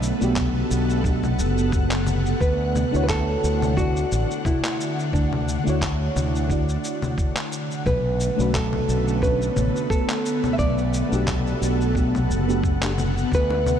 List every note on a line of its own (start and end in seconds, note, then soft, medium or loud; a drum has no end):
0.00 0.11 B1 loud
0.00 2.38 B3 medium
0.00 1.70 D4 medium
0.00 2.38 A4 medium
0.00 7.83 F#5 medium
0.00 shaker medium
0.19 0.62 B1 medium
0.19 1.00 A3 medium
0.19 1.00 B3 medium
0.19 1.01 D4 medium
0.19 shaker soft
0.23 1.02 F#4 medium
0.23 1.02 G4 loud
0.36 kick loud
0.36 clap medium
0.36 low conga medium
0.36 shaker soft
0.71 1.41 B1 loud
0.71 shaker medium
0.90 shaker soft
1.01 2.37 A3 medium
1.01 2.38 B3 medium
1.01 2.39 D4 medium
1.01 kick loud
1.01 shaker soft
1.05 2.39 F#4 medium
1.05 2.40 G4 medium
1.23 low conga medium
1.23 shaker soft
1.39 2.33 F#1 medium
1.39 shaker medium
1.58 shaker soft
1.72 kick loud
1.72 shaker soft
1.91 clap medium
2.06 low conga medium
2.06 shaker medium
2.26 shaker soft
2.41 2.83 D2 loud
2.41 7.83 D3 medium
2.41 2.99 B4 loud
2.41 kick loud
2.41 shaker soft
2.75 low conga medium
2.75 shaker medium
2.91 3.35 D2 medium
2.91 3.72 A3 loud
2.91 3.73 D4 medium
2.91 3.74 E4 medium
2.91 shaker soft
2.95 3.74 F#4 medium
2.95 3.75 C#5 loud
3.04 3.09 B4 medium
3.09 3.77 A4 loud
3.09 kick loud
3.09 clap medium
3.09 shaker soft
3.44 4.03 D2 loud
3.44 shaker medium
3.62 low conga medium
3.62 shaker soft
3.75 5.61 A3 medium
3.75 5.61 D4 medium
3.75 5.62 E4 medium
3.75 4.47 F#4 loud
3.75 kick loud
3.75 shaker soft
3.79 5.63 F#4 medium
3.79 5.63 D5 medium
3.96 shaker soft
4.12 4.24 A1 medium
4.12 shaker medium
4.31 shaker soft
4.45 5.10 E4 medium
4.45 kick loud
4.45 low conga medium
4.45 shaker soft
4.64 clap medium
4.81 shaker medium
4.99 shaker soft
5.13 5.56 D2 loud
5.13 7.14 D4 medium
5.13 kick loud
5.13 shaker soft
5.33 low conga medium
5.48 shaker medium
5.64 6.08 D2 medium
5.64 6.45 A3 loud
5.64 6.46 D4 medium
5.64 6.46 E4 medium
5.64 shaker soft
5.68 6.47 F#4 medium
5.68 6.48 C#5 loud
5.81 kick loud
5.81 clap medium
5.81 shaker soft
6.16 6.76 D2 loud
6.16 low conga medium
6.16 shaker medium
6.36 shaker soft
6.47 7.83 A3 medium
6.47 7.84 D4 medium
6.47 7.85 E4 medium
6.47 kick loud
6.47 shaker soft
6.51 7.85 F#4 medium
6.51 7.86 D5 medium
6.69 shaker soft
6.84 shaker medium
7.02 low conga medium
7.02 shaker soft
7.18 kick loud
7.18 shaker soft
7.37 clap medium
7.52 shaker medium
7.71 shaker soft
7.86 8.29 B1 loud
7.86 10.56 D3 medium
7.86 10.56 A3 medium
7.86 13.28 B3 medium
7.86 8.54 B4 loud
7.86 kick medium
7.86 low conga medium
7.86 shaker soft
8.20 shaker medium
8.36 8.80 B1 medium
8.36 9.18 A3 medium
8.36 9.18 C#4 medium
8.36 9.19 D4 medium
8.36 9.19 F#4 medium
8.36 shaker soft
8.41 9.20 B4 loud
8.54 9.19 A4 medium
8.54 kick loud
8.54 clap medium
8.54 shaker soft
8.73 low conga medium
8.88 9.48 B1 loud
8.88 shaker medium
9.08 shaker soft
9.19 10.56 A3 medium
9.19 10.56 C#4 medium
9.19 10.57 D4 medium
9.19 9.90 B4 loud
9.19 kick loud
9.19 shaker soft
9.24 10.58 F#4 medium
9.24 10.58 C#5 medium
9.42 shaker soft
9.56 9.69 A1 medium
9.56 low conga medium
9.56 shaker medium
9.76 shaker soft
9.90 10.53 A4 medium
9.90 kick loud
9.90 shaker soft
10.10 clap medium
10.26 shaker medium
10.44 low conga medium
10.44 shaker soft
10.53 10.58 E5 medium
10.58 11.01 B1 loud
10.58 13.29 A4 medium
10.58 12.59 D5 loud
10.58 13.79 F#5 medium
10.58 kick medium
10.58 shaker soft
10.78 shaker soft
10.94 shaker medium
11.09 11.53 B1 medium
11.09 11.90 A3 loud
11.09 11.91 B3 medium
11.09 11.92 D4 medium
11.09 shaker soft
11.13 11.92 F#4 medium
11.13 11.93 G4 loud
11.27 kick loud
11.27 clap medium
11.27 low conga medium
11.27 shaker soft
11.47 shaker soft
11.61 12.31 B1 medium
11.61 shaker medium
11.81 shaker soft
11.94 12.44 A3 medium
11.94 12.44 B3 medium
11.94 12.44 D4 medium
11.94 12.45 F#4 medium
11.94 12.45 G4 medium
11.94 kick loud
11.94 shaker soft
12.15 low conga medium
12.15 shaker soft
12.30 13.23 F#1 medium
12.30 shaker medium
12.47 12.77 A3 medium
12.47 12.78 B3 medium
12.47 12.78 D4 medium
12.47 12.78 F#4 medium
12.47 12.79 G4 medium
12.47 shaker soft
12.64 kick loud
12.64 shaker soft
12.81 12.90 A3 medium
12.81 12.91 B3 medium
12.81 12.91 D4 medium
12.81 12.91 F#4 medium
12.81 12.92 G4 medium
12.81 clap medium
12.81 shaker soft
12.98 low conga medium
12.98 shaker medium
13.18 shaker soft
13.32 13.74 D2 loud
13.32 13.79 D3 medium
13.32 13.79 B4 loud
13.32 kick loud
13.32 shaker soft
13.50 high bongo medium
13.66 low conga medium
13.66 shaker medium